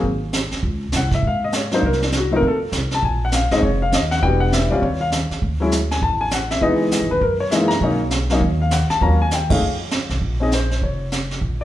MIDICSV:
0, 0, Header, 1, 5, 480
1, 0, Start_track
1, 0, Tempo, 299252
1, 1023, Time_signature, 4, 2, 24, 8
1, 18671, End_track
2, 0, Start_track
2, 0, Title_t, "Upright piano"
2, 0, Program_c, 0, 0
2, 1547, Note_on_c, 0, 78, 74
2, 1817, Note_off_c, 0, 78, 0
2, 1835, Note_on_c, 0, 76, 78
2, 1992, Note_off_c, 0, 76, 0
2, 2042, Note_on_c, 0, 77, 79
2, 2304, Note_off_c, 0, 77, 0
2, 2315, Note_on_c, 0, 75, 72
2, 2472, Note_off_c, 0, 75, 0
2, 2495, Note_on_c, 0, 73, 64
2, 2756, Note_on_c, 0, 54, 61
2, 2762, Note_on_c, 0, 58, 60
2, 2770, Note_off_c, 0, 73, 0
2, 2784, Note_on_c, 0, 62, 58
2, 2787, Note_on_c, 0, 63, 68
2, 2800, Note_on_c, 0, 72, 77
2, 2918, Note_off_c, 0, 54, 0
2, 2922, Note_off_c, 0, 58, 0
2, 2933, Note_off_c, 0, 62, 0
2, 2934, Note_off_c, 0, 63, 0
2, 2954, Note_off_c, 0, 72, 0
2, 2978, Note_on_c, 0, 70, 71
2, 3250, Note_off_c, 0, 70, 0
2, 3268, Note_on_c, 0, 62, 54
2, 3427, Note_off_c, 0, 62, 0
2, 3486, Note_on_c, 0, 66, 71
2, 3710, Note_on_c, 0, 53, 62
2, 3711, Note_on_c, 0, 57, 60
2, 3728, Note_on_c, 0, 60, 57
2, 3734, Note_on_c, 0, 63, 67
2, 3745, Note_off_c, 0, 66, 0
2, 3788, Note_on_c, 0, 70, 90
2, 3874, Note_off_c, 0, 53, 0
2, 3875, Note_off_c, 0, 57, 0
2, 3884, Note_off_c, 0, 60, 0
2, 3886, Note_off_c, 0, 63, 0
2, 3927, Note_off_c, 0, 70, 0
2, 3973, Note_on_c, 0, 69, 78
2, 4130, Note_off_c, 0, 69, 0
2, 4722, Note_on_c, 0, 81, 90
2, 4873, Note_off_c, 0, 81, 0
2, 4884, Note_on_c, 0, 80, 77
2, 5162, Note_off_c, 0, 80, 0
2, 5208, Note_on_c, 0, 78, 76
2, 5356, Note_off_c, 0, 78, 0
2, 5361, Note_on_c, 0, 77, 80
2, 5639, Note_on_c, 0, 56, 70
2, 5640, Note_off_c, 0, 77, 0
2, 5641, Note_on_c, 0, 75, 76
2, 5645, Note_on_c, 0, 60, 63
2, 5654, Note_on_c, 0, 61, 65
2, 5671, Note_on_c, 0, 63, 78
2, 5745, Note_on_c, 0, 72, 50
2, 5788, Note_off_c, 0, 72, 0
2, 5797, Note_off_c, 0, 56, 0
2, 5800, Note_off_c, 0, 60, 0
2, 5805, Note_off_c, 0, 61, 0
2, 5811, Note_off_c, 0, 75, 0
2, 5813, Note_off_c, 0, 63, 0
2, 5821, Note_on_c, 0, 73, 72
2, 6109, Note_off_c, 0, 73, 0
2, 6130, Note_on_c, 0, 77, 86
2, 6296, Note_off_c, 0, 77, 0
2, 6319, Note_on_c, 0, 75, 72
2, 6597, Note_on_c, 0, 78, 94
2, 6599, Note_off_c, 0, 75, 0
2, 6769, Note_off_c, 0, 78, 0
2, 6777, Note_on_c, 0, 55, 58
2, 6779, Note_on_c, 0, 79, 94
2, 6793, Note_on_c, 0, 59, 53
2, 6799, Note_on_c, 0, 62, 52
2, 6809, Note_on_c, 0, 66, 62
2, 7063, Note_on_c, 0, 78, 85
2, 7068, Note_off_c, 0, 79, 0
2, 7241, Note_off_c, 0, 78, 0
2, 7264, Note_on_c, 0, 76, 77
2, 7496, Note_off_c, 0, 55, 0
2, 7504, Note_off_c, 0, 59, 0
2, 7506, Note_off_c, 0, 62, 0
2, 7512, Note_off_c, 0, 66, 0
2, 7548, Note_on_c, 0, 74, 74
2, 7551, Note_off_c, 0, 76, 0
2, 7557, Note_on_c, 0, 55, 65
2, 7564, Note_on_c, 0, 60, 57
2, 7569, Note_on_c, 0, 61, 55
2, 7586, Note_on_c, 0, 65, 74
2, 7716, Note_off_c, 0, 55, 0
2, 7720, Note_off_c, 0, 60, 0
2, 7722, Note_off_c, 0, 61, 0
2, 7724, Note_off_c, 0, 74, 0
2, 7730, Note_off_c, 0, 65, 0
2, 7741, Note_on_c, 0, 73, 66
2, 8029, Note_off_c, 0, 73, 0
2, 8035, Note_on_c, 0, 77, 84
2, 8141, Note_off_c, 0, 77, 0
2, 8984, Note_on_c, 0, 54, 66
2, 9001, Note_on_c, 0, 56, 57
2, 9011, Note_on_c, 0, 64, 74
2, 9015, Note_on_c, 0, 61, 58
2, 9150, Note_off_c, 0, 54, 0
2, 9158, Note_off_c, 0, 56, 0
2, 9163, Note_off_c, 0, 64, 0
2, 9165, Note_off_c, 0, 61, 0
2, 9487, Note_on_c, 0, 80, 84
2, 9654, Note_off_c, 0, 80, 0
2, 9665, Note_on_c, 0, 81, 85
2, 9951, Note_off_c, 0, 81, 0
2, 9958, Note_on_c, 0, 80, 93
2, 10129, Note_off_c, 0, 80, 0
2, 10160, Note_on_c, 0, 78, 72
2, 10439, Note_off_c, 0, 78, 0
2, 10440, Note_on_c, 0, 76, 81
2, 10598, Note_on_c, 0, 52, 63
2, 10610, Note_off_c, 0, 76, 0
2, 10611, Note_on_c, 0, 56, 56
2, 10622, Note_on_c, 0, 75, 83
2, 10625, Note_on_c, 0, 59, 62
2, 10630, Note_on_c, 0, 63, 75
2, 11326, Note_off_c, 0, 52, 0
2, 11333, Note_off_c, 0, 56, 0
2, 11340, Note_off_c, 0, 59, 0
2, 11342, Note_off_c, 0, 63, 0
2, 11344, Note_off_c, 0, 75, 0
2, 11406, Note_on_c, 0, 71, 81
2, 11573, Note_off_c, 0, 71, 0
2, 11588, Note_on_c, 0, 70, 65
2, 11873, Note_off_c, 0, 70, 0
2, 11876, Note_on_c, 0, 73, 82
2, 12043, Note_on_c, 0, 76, 71
2, 12048, Note_off_c, 0, 73, 0
2, 12056, Note_on_c, 0, 56, 61
2, 12059, Note_on_c, 0, 52, 72
2, 12074, Note_on_c, 0, 58, 61
2, 12083, Note_on_c, 0, 63, 70
2, 12318, Note_on_c, 0, 82, 97
2, 12326, Note_off_c, 0, 56, 0
2, 12327, Note_off_c, 0, 52, 0
2, 12335, Note_off_c, 0, 58, 0
2, 12339, Note_off_c, 0, 63, 0
2, 12340, Note_off_c, 0, 76, 0
2, 12534, Note_on_c, 0, 54, 61
2, 12547, Note_on_c, 0, 58, 57
2, 12559, Note_on_c, 0, 61, 61
2, 12571, Note_on_c, 0, 63, 71
2, 12781, Note_off_c, 0, 82, 0
2, 12805, Note_off_c, 0, 54, 0
2, 12811, Note_off_c, 0, 58, 0
2, 12817, Note_off_c, 0, 61, 0
2, 12823, Note_off_c, 0, 63, 0
2, 13319, Note_on_c, 0, 58, 69
2, 13320, Note_on_c, 0, 54, 67
2, 13344, Note_on_c, 0, 61, 62
2, 13351, Note_on_c, 0, 63, 80
2, 13477, Note_off_c, 0, 58, 0
2, 13478, Note_off_c, 0, 54, 0
2, 13490, Note_off_c, 0, 61, 0
2, 13494, Note_off_c, 0, 63, 0
2, 13820, Note_on_c, 0, 77, 74
2, 13981, Note_off_c, 0, 77, 0
2, 13995, Note_on_c, 0, 78, 69
2, 14277, Note_off_c, 0, 78, 0
2, 14278, Note_on_c, 0, 81, 93
2, 14450, Note_off_c, 0, 81, 0
2, 14459, Note_on_c, 0, 54, 60
2, 14464, Note_on_c, 0, 58, 63
2, 14473, Note_on_c, 0, 82, 84
2, 14480, Note_on_c, 0, 61, 60
2, 14485, Note_on_c, 0, 65, 63
2, 14728, Note_off_c, 0, 54, 0
2, 14730, Note_off_c, 0, 58, 0
2, 14738, Note_off_c, 0, 61, 0
2, 14741, Note_off_c, 0, 65, 0
2, 14756, Note_off_c, 0, 82, 0
2, 14783, Note_on_c, 0, 80, 88
2, 14943, Note_off_c, 0, 80, 0
2, 14980, Note_on_c, 0, 79, 73
2, 15229, Note_on_c, 0, 57, 66
2, 15243, Note_on_c, 0, 61, 61
2, 15243, Note_on_c, 0, 63, 60
2, 15251, Note_off_c, 0, 79, 0
2, 15262, Note_on_c, 0, 68, 69
2, 15266, Note_on_c, 0, 77, 81
2, 15393, Note_off_c, 0, 57, 0
2, 15400, Note_off_c, 0, 61, 0
2, 15401, Note_off_c, 0, 63, 0
2, 15410, Note_off_c, 0, 68, 0
2, 15865, Note_off_c, 0, 77, 0
2, 16684, Note_on_c, 0, 60, 54
2, 16698, Note_on_c, 0, 61, 52
2, 16711, Note_on_c, 0, 63, 51
2, 16719, Note_on_c, 0, 68, 58
2, 16728, Note_on_c, 0, 75, 62
2, 16843, Note_off_c, 0, 60, 0
2, 16849, Note_off_c, 0, 61, 0
2, 16856, Note_off_c, 0, 63, 0
2, 16860, Note_off_c, 0, 68, 0
2, 16877, Note_off_c, 0, 75, 0
2, 16905, Note_on_c, 0, 72, 61
2, 17330, Note_off_c, 0, 72, 0
2, 17377, Note_on_c, 0, 73, 57
2, 18088, Note_off_c, 0, 73, 0
2, 18671, End_track
3, 0, Start_track
3, 0, Title_t, "Upright bass"
3, 0, Program_c, 1, 32
3, 59, Note_on_c, 1, 32, 67
3, 787, Note_off_c, 1, 32, 0
3, 1011, Note_on_c, 1, 37, 80
3, 1462, Note_off_c, 1, 37, 0
3, 1488, Note_on_c, 1, 36, 73
3, 1940, Note_off_c, 1, 36, 0
3, 1961, Note_on_c, 1, 44, 65
3, 2880, Note_off_c, 1, 44, 0
3, 2931, Note_on_c, 1, 36, 75
3, 3844, Note_off_c, 1, 36, 0
3, 3892, Note_on_c, 1, 41, 72
3, 4340, Note_off_c, 1, 41, 0
3, 4357, Note_on_c, 1, 36, 70
3, 4811, Note_off_c, 1, 36, 0
3, 4856, Note_on_c, 1, 34, 76
3, 5581, Note_off_c, 1, 34, 0
3, 5636, Note_on_c, 1, 33, 63
3, 5801, Note_off_c, 1, 33, 0
3, 5819, Note_on_c, 1, 29, 72
3, 6262, Note_off_c, 1, 29, 0
3, 6284, Note_on_c, 1, 39, 74
3, 6734, Note_off_c, 1, 39, 0
3, 6778, Note_on_c, 1, 28, 84
3, 7502, Note_off_c, 1, 28, 0
3, 7554, Note_on_c, 1, 38, 65
3, 7720, Note_off_c, 1, 38, 0
3, 7741, Note_on_c, 1, 39, 76
3, 8463, Note_off_c, 1, 39, 0
3, 8692, Note_on_c, 1, 38, 78
3, 9604, Note_off_c, 1, 38, 0
3, 9655, Note_on_c, 1, 33, 71
3, 10566, Note_off_c, 1, 33, 0
3, 10611, Note_on_c, 1, 37, 75
3, 11207, Note_off_c, 1, 37, 0
3, 11240, Note_on_c, 1, 44, 57
3, 11394, Note_off_c, 1, 44, 0
3, 11403, Note_on_c, 1, 49, 67
3, 11556, Note_off_c, 1, 49, 0
3, 11571, Note_on_c, 1, 42, 77
3, 12484, Note_off_c, 1, 42, 0
3, 12531, Note_on_c, 1, 35, 78
3, 13444, Note_off_c, 1, 35, 0
3, 13490, Note_on_c, 1, 39, 84
3, 14219, Note_off_c, 1, 39, 0
3, 14457, Note_on_c, 1, 39, 78
3, 15368, Note_off_c, 1, 39, 0
3, 15416, Note_on_c, 1, 41, 72
3, 16143, Note_off_c, 1, 41, 0
3, 16193, Note_on_c, 1, 35, 68
3, 16361, Note_off_c, 1, 35, 0
3, 16385, Note_on_c, 1, 34, 76
3, 17295, Note_off_c, 1, 34, 0
3, 17355, Note_on_c, 1, 29, 67
3, 18262, Note_off_c, 1, 29, 0
3, 18309, Note_on_c, 1, 34, 70
3, 18671, Note_off_c, 1, 34, 0
3, 18671, End_track
4, 0, Start_track
4, 0, Title_t, "Muted upright bass strokes"
4, 837, Note_on_c, 9, 29, 31
4, 997, Note_off_c, 9, 29, 0
4, 8507, Note_on_c, 9, 29, 35
4, 8667, Note_off_c, 9, 29, 0
4, 14266, Note_on_c, 9, 29, 39
4, 14427, Note_off_c, 9, 29, 0
4, 18671, End_track
5, 0, Start_track
5, 0, Title_t, "Drums"
5, 57, Note_on_c, 9, 36, 26
5, 58, Note_on_c, 9, 25, 43
5, 218, Note_off_c, 9, 36, 0
5, 525, Note_on_c, 9, 44, 51
5, 532, Note_on_c, 9, 38, 52
5, 686, Note_off_c, 9, 44, 0
5, 692, Note_off_c, 9, 38, 0
5, 824, Note_on_c, 9, 38, 30
5, 985, Note_off_c, 9, 38, 0
5, 999, Note_off_c, 9, 25, 0
5, 999, Note_on_c, 9, 25, 46
5, 1009, Note_on_c, 9, 36, 29
5, 1169, Note_off_c, 9, 36, 0
5, 1475, Note_on_c, 9, 44, 49
5, 1482, Note_on_c, 9, 38, 53
5, 1636, Note_off_c, 9, 44, 0
5, 1642, Note_off_c, 9, 38, 0
5, 1783, Note_on_c, 9, 38, 34
5, 1789, Note_on_c, 9, 36, 53
5, 1944, Note_off_c, 9, 38, 0
5, 1949, Note_off_c, 9, 36, 0
5, 1965, Note_off_c, 9, 25, 0
5, 1965, Note_on_c, 9, 25, 38
5, 1969, Note_on_c, 9, 36, 31
5, 2129, Note_off_c, 9, 36, 0
5, 2443, Note_on_c, 9, 44, 49
5, 2449, Note_on_c, 9, 38, 55
5, 2603, Note_off_c, 9, 44, 0
5, 2609, Note_off_c, 9, 38, 0
5, 2749, Note_on_c, 9, 38, 35
5, 2909, Note_off_c, 9, 38, 0
5, 2931, Note_on_c, 9, 36, 29
5, 2932, Note_off_c, 9, 25, 0
5, 2932, Note_on_c, 9, 25, 46
5, 3091, Note_on_c, 9, 38, 26
5, 3092, Note_off_c, 9, 36, 0
5, 3243, Note_off_c, 9, 38, 0
5, 3243, Note_on_c, 9, 38, 42
5, 3398, Note_on_c, 9, 44, 45
5, 3404, Note_off_c, 9, 38, 0
5, 3404, Note_on_c, 9, 38, 48
5, 3558, Note_off_c, 9, 44, 0
5, 3565, Note_off_c, 9, 38, 0
5, 3885, Note_off_c, 9, 25, 0
5, 3885, Note_on_c, 9, 25, 40
5, 3889, Note_on_c, 9, 36, 34
5, 4050, Note_off_c, 9, 36, 0
5, 4364, Note_on_c, 9, 44, 47
5, 4371, Note_on_c, 9, 38, 53
5, 4525, Note_off_c, 9, 44, 0
5, 4531, Note_off_c, 9, 38, 0
5, 4665, Note_on_c, 9, 38, 36
5, 4825, Note_off_c, 9, 38, 0
5, 4854, Note_off_c, 9, 25, 0
5, 4854, Note_on_c, 9, 25, 47
5, 4855, Note_on_c, 9, 36, 33
5, 5015, Note_off_c, 9, 36, 0
5, 5321, Note_on_c, 9, 44, 58
5, 5328, Note_on_c, 9, 38, 58
5, 5482, Note_off_c, 9, 44, 0
5, 5488, Note_off_c, 9, 38, 0
5, 5632, Note_on_c, 9, 38, 37
5, 5792, Note_off_c, 9, 38, 0
5, 5818, Note_on_c, 9, 36, 32
5, 5819, Note_off_c, 9, 25, 0
5, 5819, Note_on_c, 9, 25, 40
5, 5978, Note_off_c, 9, 36, 0
5, 6292, Note_on_c, 9, 44, 55
5, 6298, Note_on_c, 9, 38, 53
5, 6452, Note_off_c, 9, 44, 0
5, 6458, Note_off_c, 9, 38, 0
5, 6600, Note_on_c, 9, 38, 36
5, 6761, Note_off_c, 9, 38, 0
5, 6777, Note_on_c, 9, 36, 28
5, 6786, Note_off_c, 9, 25, 0
5, 6786, Note_on_c, 9, 25, 39
5, 6937, Note_off_c, 9, 36, 0
5, 7252, Note_on_c, 9, 44, 49
5, 7259, Note_on_c, 9, 38, 53
5, 7413, Note_off_c, 9, 44, 0
5, 7419, Note_off_c, 9, 38, 0
5, 7734, Note_on_c, 9, 36, 31
5, 7740, Note_off_c, 9, 25, 0
5, 7740, Note_on_c, 9, 25, 44
5, 7895, Note_off_c, 9, 36, 0
5, 8207, Note_on_c, 9, 44, 51
5, 8213, Note_on_c, 9, 38, 53
5, 8367, Note_off_c, 9, 44, 0
5, 8374, Note_off_c, 9, 38, 0
5, 8519, Note_on_c, 9, 38, 33
5, 8679, Note_off_c, 9, 38, 0
5, 8694, Note_on_c, 9, 36, 32
5, 8702, Note_off_c, 9, 25, 0
5, 8702, Note_on_c, 9, 25, 50
5, 8854, Note_off_c, 9, 36, 0
5, 9167, Note_on_c, 9, 44, 55
5, 9173, Note_on_c, 9, 38, 52
5, 9327, Note_off_c, 9, 44, 0
5, 9334, Note_off_c, 9, 38, 0
5, 9483, Note_on_c, 9, 38, 38
5, 9643, Note_off_c, 9, 38, 0
5, 9654, Note_on_c, 9, 36, 32
5, 9657, Note_off_c, 9, 25, 0
5, 9657, Note_on_c, 9, 25, 41
5, 9814, Note_off_c, 9, 36, 0
5, 10120, Note_on_c, 9, 44, 50
5, 10126, Note_on_c, 9, 38, 57
5, 10280, Note_off_c, 9, 44, 0
5, 10286, Note_off_c, 9, 38, 0
5, 10435, Note_on_c, 9, 38, 37
5, 10596, Note_off_c, 9, 38, 0
5, 10611, Note_off_c, 9, 25, 0
5, 10611, Note_on_c, 9, 25, 52
5, 10611, Note_on_c, 9, 36, 32
5, 10771, Note_off_c, 9, 36, 0
5, 11089, Note_on_c, 9, 44, 61
5, 11096, Note_on_c, 9, 38, 58
5, 11250, Note_off_c, 9, 44, 0
5, 11256, Note_off_c, 9, 38, 0
5, 11570, Note_on_c, 9, 36, 31
5, 11572, Note_off_c, 9, 25, 0
5, 11572, Note_on_c, 9, 25, 45
5, 11731, Note_off_c, 9, 36, 0
5, 12050, Note_on_c, 9, 44, 51
5, 12056, Note_on_c, 9, 38, 54
5, 12210, Note_off_c, 9, 44, 0
5, 12217, Note_off_c, 9, 38, 0
5, 12355, Note_on_c, 9, 38, 41
5, 12516, Note_off_c, 9, 38, 0
5, 12522, Note_off_c, 9, 25, 0
5, 12522, Note_on_c, 9, 25, 49
5, 12528, Note_on_c, 9, 36, 34
5, 12688, Note_off_c, 9, 36, 0
5, 13000, Note_on_c, 9, 44, 51
5, 13006, Note_on_c, 9, 38, 57
5, 13160, Note_off_c, 9, 44, 0
5, 13167, Note_off_c, 9, 38, 0
5, 13307, Note_on_c, 9, 38, 37
5, 13467, Note_off_c, 9, 38, 0
5, 13486, Note_off_c, 9, 25, 0
5, 13486, Note_on_c, 9, 25, 45
5, 13493, Note_on_c, 9, 36, 33
5, 13654, Note_off_c, 9, 36, 0
5, 13967, Note_on_c, 9, 44, 57
5, 13974, Note_on_c, 9, 38, 56
5, 14128, Note_off_c, 9, 44, 0
5, 14134, Note_off_c, 9, 38, 0
5, 14275, Note_on_c, 9, 38, 37
5, 14436, Note_off_c, 9, 38, 0
5, 14457, Note_off_c, 9, 25, 0
5, 14457, Note_on_c, 9, 25, 48
5, 14459, Note_on_c, 9, 36, 32
5, 14619, Note_off_c, 9, 36, 0
5, 14932, Note_on_c, 9, 44, 54
5, 14939, Note_on_c, 9, 38, 56
5, 15093, Note_off_c, 9, 44, 0
5, 15099, Note_off_c, 9, 38, 0
5, 15240, Note_on_c, 9, 51, 72
5, 15244, Note_on_c, 9, 36, 74
5, 15401, Note_off_c, 9, 51, 0
5, 15404, Note_off_c, 9, 36, 0
5, 15423, Note_off_c, 9, 25, 0
5, 15423, Note_on_c, 9, 25, 46
5, 15897, Note_on_c, 9, 44, 46
5, 15904, Note_on_c, 9, 38, 58
5, 16058, Note_off_c, 9, 44, 0
5, 16064, Note_off_c, 9, 38, 0
5, 16203, Note_on_c, 9, 38, 38
5, 16363, Note_off_c, 9, 38, 0
5, 16383, Note_off_c, 9, 25, 0
5, 16383, Note_on_c, 9, 25, 36
5, 16384, Note_on_c, 9, 36, 28
5, 16544, Note_off_c, 9, 36, 0
5, 16867, Note_on_c, 9, 44, 54
5, 16873, Note_on_c, 9, 38, 45
5, 17027, Note_off_c, 9, 44, 0
5, 17034, Note_off_c, 9, 38, 0
5, 17181, Note_on_c, 9, 38, 32
5, 17341, Note_off_c, 9, 38, 0
5, 17351, Note_on_c, 9, 36, 29
5, 17362, Note_off_c, 9, 25, 0
5, 17362, Note_on_c, 9, 25, 44
5, 17511, Note_off_c, 9, 36, 0
5, 17831, Note_on_c, 9, 44, 52
5, 17837, Note_on_c, 9, 38, 50
5, 17991, Note_off_c, 9, 44, 0
5, 17998, Note_off_c, 9, 38, 0
5, 18140, Note_on_c, 9, 38, 32
5, 18300, Note_off_c, 9, 38, 0
5, 18309, Note_on_c, 9, 36, 29
5, 18311, Note_off_c, 9, 25, 0
5, 18311, Note_on_c, 9, 25, 41
5, 18469, Note_off_c, 9, 36, 0
5, 18671, Note_off_c, 9, 25, 0
5, 18671, End_track
0, 0, End_of_file